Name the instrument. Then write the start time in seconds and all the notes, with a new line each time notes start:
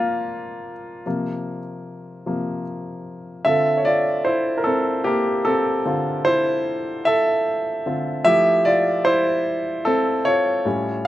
grand piano
Already playing: C3 F3 A#3 D4 F4 A#4
1.06 C3 F3 A#3
2.26 C3 F3 A#3
3.45 D3 C4 F4 A4 E5
3.78 C#5
3.85 F4 D5
4.25 E4 C5
4.58 A#4
4.64 C4 A4
5.04 A#3 G4
5.45 C4 A4
5.86 D3 C4 F4
6.25 E4 C5
7.05 A4 E5
7.86 D3 C4 F4
8.25 F3 A3 E4 G4 E5
8.65 F4 D5
9.05 E4 C5
9.85 C4 A4
10.25 F4 C#5
10.65 A2 G3 C#4